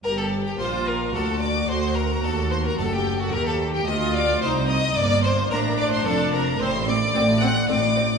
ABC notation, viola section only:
X:1
M:3/4
L:1/8
Q:1/4=110
K:Gm
V:1 name="Viola section"
G2 F2 ^F2 | ^F4 A2 | G2 F2 E2 | B,2 D2 D2 |
C C C C C C |]